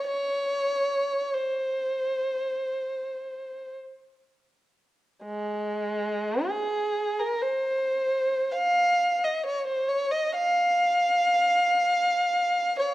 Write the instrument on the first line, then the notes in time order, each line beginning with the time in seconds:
violin
0.07 C#5
1.33 C5
5.25 G#3
6.46 G#4
7.19 A#4
7.42 C5
8.52 F5
9.24 D#5
9.46 C#5
9.66 C5
9.89 C#5
10.11 D#5
10.35 F5
12.79 C#5